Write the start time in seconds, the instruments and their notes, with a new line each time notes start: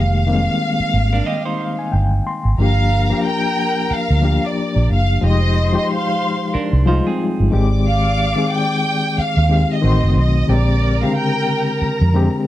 Already playing: fingered electric bass F1, reed electric piano D#3 G#3 A#3 G4, violin section F5
0.26 reed electric piano D#3 G3 A#3 C4
0.34 reed electric piano G#3
0.80 muted fingered electric bass stroke
0.94 fingered electric bass G#1
1.13 clean electric guitar D4 A#4
1.26 clean electric guitar G4 D#5
1.45 clean electric guitar D#4 C5
1.60 reed electric piano F5
1.79 reed electric piano G#5
1.92 fingered electric bass G1, reed electric piano G5
2.27 reed electric piano C6
2.45 fingered electric bass G#1
2.58 fingered electric bass G1, reed electric piano F3 A#3 D4 G4, string section A#4 A#5, violin section F5
3.10 reed electric piano F3 A#3 D4 G4
3.26 violin section G5
3.91 violin section F5, muted fingered electric bass stroke
4.10 fingered electric bass D2
4.22 reed electric piano F3 A#3 D4 G4
4.45 violin section D5
4.76 fingered electric bass A#1
4.90 fingered electric bass F#1, violin section F5
5.21 fingered electric bass F1, reed electric piano F3 G#3 D#4 G4, string section C5 C6
5.26 violin section D#5
5.73 reed electric piano F3 G#3 D#4 G4
5.77 violin section D#5
5.92 violin section F5
6.54 clean electric guitar D4 A#4, muted fingered electric bass stroke
6.73 fingered electric bass C2
6.86 reed electric piano F3 G3 D#4 F4, clean electric guitar D#4 C5
6.93 reed electric piano G#3
7.07 clean electric guitar C4 G#4
7.40 fingered electric bass G1
7.51 fingered electric bass G#1, reed electric piano D#3 G#3 C4 G4, string section D5 D6
7.87 violin section F5
8.36 reed electric piano D#3 G#3 C4 G#4
8.54 violin section G5
9.18 violin section F5, muted fingered electric bass stroke
9.37 fingered electric bass D#2
9.49 reed electric piano D#3 G#3 C4 G4
9.72 violin section D#5
9.82 fingered electric bass A1, reed electric piano D#3 A3 C4 F#4, string section C5 C6
10.03 fingered electric bass F#1
10.16 fingered electric bass B1, violin section D#5
10.47 fingered electric bass A#1, reed electric piano D3 G#3 C4 G4, string section A#4 A#5
10.52 violin section D5
11.01 reed electric piano C#3 G#3 C4 G4, violin section F5
11.07 reed electric piano D3
11.16 violin section G5
11.82 muted fingered electric bass stroke
12.01 fingered electric bass F2
12.14 reed electric piano D3 G#3 C4 G4